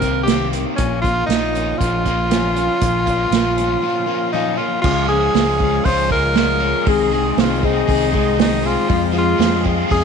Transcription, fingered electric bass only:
Already playing: C2
0.78 A#1
1.28 A#1
1.81 A#1
2.82 A#1
3.31 A#1
4.84 C#2
5.34 C#2
5.85 C#2
6.87 C2
7.37 C2
7.88 C2
8.90 F2
9.39 F2
9.91 F2

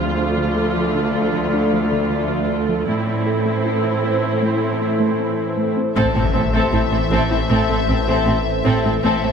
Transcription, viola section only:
Already playing: A3 F4
2.88 C4 E4
5.96 C4
6.16 C4
6.34 C4
6.54 C4
6.74 C4
6.92 C4
7.11 C4
7.30 C4
7.50 C4
7.69 C4
7.88 C4
8.07 C4
8.26 C4
8.65 C4
8.85 C4
9.03 C4
9.22 C4

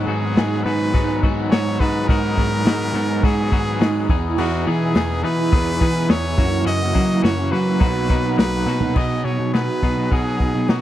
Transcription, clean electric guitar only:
0.07 F#3 B3 D#4 F#4
0.36 F#3 B3 D#4 F#4
0.66 F#3 B3 D#4 F#4
0.94 F#3 B3 D#4 F#4
1.23 F#3 B3 D#4 F#4
1.51 F#3 B3 D#4 F#4
1.80 F#3 B3 D#4 F#4
2.09 F#3 B3 D#4 F#4
2.37 F#3 B3 D#4 F#4
2.66 F#3 B3 D#4 F#4
2.93 F#3 B3 D#4 F#4
3.23 F#3 B3 D#4 F#4
3.51 F#3 B3 D#4 F#4
3.80 F#3 B3 D#4 F#4
4.09 E3 B3 D#4 G#4
4.38 E3 B3 D#4 G#4
4.66 E3 B3 D#4 G#4
4.95 E3 B3 D#4 G#4
5.23 E3 B3 D#4 G#4
5.52 E3 B3 D#4 G#4
5.81 E3 B3 D#4 G#4
6.08 E3 B3 D#4 G#4
6.37 E3 A#3 C#4 F#4
6.65 E3 A#3 C#4 F#4
6.93 E3 A#3 C#4 F#4
7.22 E3 A#3 C#4 F#4
7.51 E3 A#3 C#4 F#4
7.79 F#3 A#3 D#4 F#4
8.09 F#3 A#3 D#4 F#4
8.37 F#3 A#3 D#4 F#4
8.66 F#3 A#3 D#4 F#4
8.94 F#3 B3 D#4 G#4
9.53 F#3 B3 D#4 G#4
9.82 F#3 B3 D#4 G#4
10.11 F#3 B3 D#4 G#4
10.68 F#3 B3 D#4 G#4

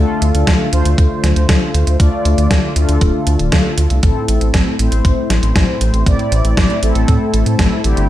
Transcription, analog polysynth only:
Already playing: D3 A3 D4 F4 A4
0.73 D3 A3 D4 F4 C5
2.00 D3 A3 D4 F4 D5
2.76 D3 A3 D4 F4 A4
4.03 A2 A3 C4 E4 A4
4.79 A2 A3 C4 E4 C5
6.06 A2 A3 C4 E4 D5
6.83 A2 A3 C4 E4 A4
7.84 D3 A3 C4 E4 G4

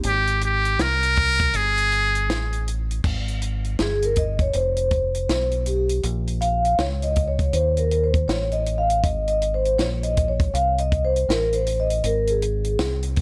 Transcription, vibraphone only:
3.81 G#4
4.05 A#4
4.18 D#5
4.41 C#5
4.55 C5
5.67 G4
6.41 F5
6.79 C#5
7.03 D#5
7.28 C#5
7.54 C5
7.78 A#4
8.04 C5
8.28 C#5
8.52 D#5
8.78 F5
9.04 D#5
9.28 D#5
9.54 C5
9.79 C#5
10.03 D#5
10.28 C#5
10.54 F5
10.79 D#5
11.05 C5
11.29 A#4
11.54 C5
11.80 D#5
12.06 A#4
12.30 G#4

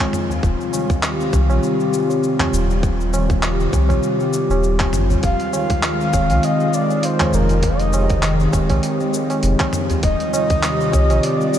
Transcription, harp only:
Already playing: D#3 G#3 C4 F4
0.00 F3
0.30 F4
0.44 F3
0.74 D#3
1.03 G3
1.20 C4
1.34 G3
1.50 F4
1.80 G3
2.40 F3
2.70 F4
2.83 F3
3.14 D#3
3.43 G3
3.60 C4
3.74 G3
3.90 F4
4.21 G3
4.80 F3
5.11 F4
5.24 F3
5.54 D#3
5.83 G#3
6.00 C4
6.13 G#3
6.30 F4
6.60 G#3
7.21 F3
7.50 F4
7.63 F3
7.94 D#3
8.23 G#3
8.40 C4
8.54 G#3
8.70 F4
9.00 G#3
9.60 F3
9.90 F4
10.03 F3
10.33 D#3
10.63 G3
10.79 C4
10.93 G3
11.10 F4
11.40 G3

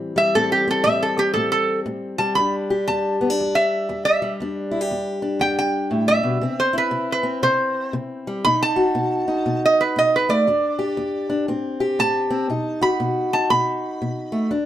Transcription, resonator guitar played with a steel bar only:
0.18 E5
0.35 A4
0.52 G4
0.71 A4
0.84 E5
1.03 A4
1.19 G4
1.34 A4
1.52 A4
2.18 A5
2.35 B5
2.88 A5
3.55 E5
4.05 E5
5.41 G5
5.59 G5
6.08 E5
6.60 C5
6.78 B4
7.12 B4
7.43 C5
8.45 B5
8.63 A5
9.66 D#5
9.81 B4
9.99 D#5
10.16 B4
10.30 D5
12.00 A5
12.82 B5
13.33 A5
13.50 B5

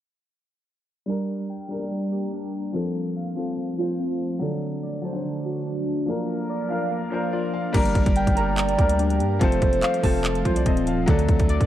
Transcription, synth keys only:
1.07 G3
1.50 G5
1.70 A#5
1.91 G3
2.12 G4
2.33 D4
2.74 F3
3.16 F5
3.37 A5
3.58 F3
3.79 F4
4.00 C4
4.41 D3
4.83 D5
5.04 A5
5.24 D3
5.45 F#4
5.66 D4
6.08 A#3
6.49 D5
6.70 F5
6.91 A#3
7.11 A#4
7.33 F4
7.74 G3
8.16 G5
8.37 A#5
8.57 G3
8.78 G4
8.99 D4
9.41 F3
9.83 F5
10.04 A5
10.24 F3
10.45 F4
10.66 C4
11.08 D3
11.49 D5

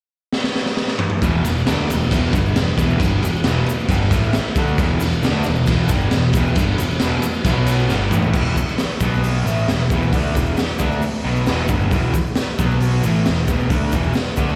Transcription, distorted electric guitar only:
1.22 E2 B2 E3
1.45 E2 B2
1.66 D3 A3 D4
1.89 E2 B2
2.11 E2 B2 E3
2.33 G2 D3 G3
2.58 E2 B2
2.78 E2 B2 E3
3.00 G2 D3 G3
3.23 E2 B2
3.44 E2 B2 E3
3.66 muted distorted electric guitar stroke
3.89 G2 D3 G3
4.11 A2 E3 A3
4.35 muted distorted electric guitar stroke
4.57 D3 A3 D4
4.79 E2 B2 E3
5.01 E2 B2
5.23 D3 A3 D4
5.46 E2 B2
5.67 E2 B2 E3
5.90 G2 D3 G3
6.13 E2 B2
6.35 E2 B2 E3
6.57 G2 D3 G3
6.79 E2 B2
7.01 E2 B2 E3
7.23 muted distorted electric guitar stroke
7.45 B2 F#3 B3
7.90 G2 D3 G3
8.13 A2 E3 A3
8.35 E2 B2 E3
8.58 muted distorted electric guitar stroke
8.79 muted distorted electric guitar stroke
9.02 B2 F#3 B3
9.46 A2 E3 A3
9.69 E2 B2
9.91 E2 B2 E3
10.13 D3 A3 D4
10.35 E2 B2 E3
10.58 muted distorted electric guitar stroke
10.79 D3 A3 D4
11.02 muted distorted electric guitar stroke
11.24 B2 F#3 B3
11.45 E2 B2 E3
11.69 G2 D3 G3
11.91 E2 B2 E3
12.15 muted distorted electric guitar stroke
12.36 muted distorted electric guitar stroke
12.59 B2 F#3 B3
13.04 A2 E3 A3
13.26 E2 B2
13.48 E2 B2 E3
13.70 D3 A3 D4
13.93 E2 B2 E3
14.16 muted distorted electric guitar stroke
14.37 D3 A3 D4

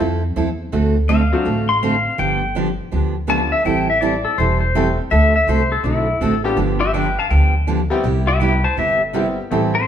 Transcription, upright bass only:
0.00 F2
0.36 E2
0.73 D2
1.46 A1
2.19 G1
2.92 D2
3.65 A1
4.38 E1
5.12 D2
5.47 C2
5.84 B1
6.21 A1
6.57 G1
7.30 D2
8.04 C2
8.78 G1
9.51 A1

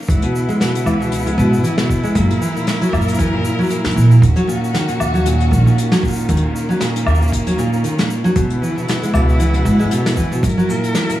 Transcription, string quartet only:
0.08 C#3 B3 E4
2.15 F#3 A#4
4.22 D#3 C#4 F#4
6.29 A#3
8.35 C#3 B3 E4
10.42 F#3 E4 A#4

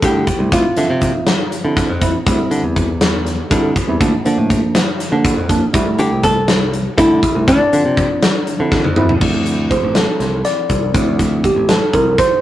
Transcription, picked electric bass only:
0.02 D3
0.39 C2
0.52 D2
0.77 D3
0.90 C3
1.65 D3
1.90 F2
2.27 D2
2.51 D3
2.63 E2
3.51 D3
3.88 E2
4.00 D2
4.26 D3
4.38 A2
5.12 D3
5.36 F2
5.74 D2
5.99 D3
6.12 C2
6.98 D3
7.35 C2
7.48 D2
7.73 D3
7.85 C3
8.60 D3
8.84 F2
9.21 D2
9.83 A1
10.20 C2
10.69 C2
10.94 D2
11.56 A1
11.94 C2

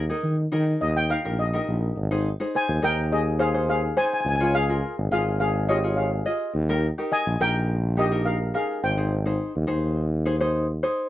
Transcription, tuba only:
Already playing: D#2
0.23 D#3
0.53 D#3
0.81 D#2
1.26 A#1
1.68 A#1
1.97 G#1
2.68 D#2
2.82 D#2
4.25 C#2
4.97 G#1
5.11 G#1
6.54 D#2
7.26 A#1
7.40 A#1
8.83 G#1
9.55 D#2
9.69 D#2

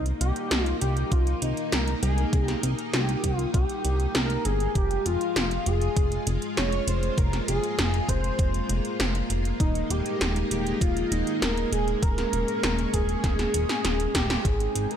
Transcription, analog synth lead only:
0.21 G4
0.65 F4
0.81 G4
1.12 F4
1.42 D#4
1.72 A#4
2.02 G#4
2.43 G4
2.94 G4
3.38 F4
3.54 G4
4.15 A#4
4.45 G#4
4.76 G4
5.06 F4
5.67 G#4
6.57 C#5
6.88 C5
7.18 A#4
7.48 G#4
8.09 C5
9.60 D#4
9.91 G4
10.51 G4
10.82 F4
11.12 D#4
11.42 A#4
11.72 G#4
12.02 A#4
12.93 G#4
14.15 G4
14.45 G#4
14.91 A#4

